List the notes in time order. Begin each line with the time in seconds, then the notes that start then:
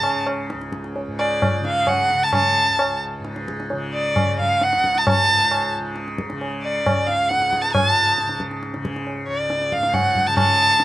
Already playing: C#2 G#2 A5
0.00 C#3, tabla na
0.27 tabla na
0.50 C#2, tabla te
0.61 tabla te
0.72 tabla ke
0.84 tabla te
0.96 tabla tin
1.07 G#2
1.19 D5, tabla na
1.42 tabla na, tabla ge
1.61 C#3, tabla te
1.67 F5
1.87 F#5, tabla na, tabla ge
2.10 tabla te
2.14 C#3
2.23 A5
2.33 A5, tabla na, tabla ge
2.68 C#2
2.79 tabla na
3.19 G#2
3.25 tabla te
3.36 tabla te
3.48 tabla ke
3.60 tabla te
3.70 C#3, tabla tin
3.94 D5
4.16 tabla na, tabla ge
4.26 C#3
4.39 F5, tabla ge
4.61 F#5, tabla te
4.73 C#2, tabla te
4.84 tabla ke
4.95 A5, tabla te
5.07 A5, tabla na, tabla ge
5.29 G#2
5.51 tabla na
5.80 C#3
5.96 tabla te
6.08 tabla te
6.18 tabla ke
6.30 C#3, tabla te
6.41 tabla tin
6.63 D5
6.85 C#2, tabla na, tabla ge
7.07 F5, tabla te
7.29 F#5, tabla te
7.37 G#2
7.42 tabla te
7.53 tabla ke
7.61 A5, tabla te
7.72 G#2 G#5, tabla na, tabla ge
7.88 A5
8.18 tabla te
8.26 C#3, tabla te
8.40 tabla ke
8.51 tabla te
8.63 tabla te
8.74 C#3, tabla te
8.85 tabla ke
8.96 tabla te
9.07 tabla tin
9.27 C#2 C#5
9.39 D5
9.50 tabla te
9.61 tabla te
9.72 F5, tabla ke
9.79 G#2
9.83 tabla te
9.94 F#5, tabla na, tabla ge
10.15 tabla ge
10.27 C#3 A5
10.37 A5, tabla na, tabla ge
10.79 C#3, tabla te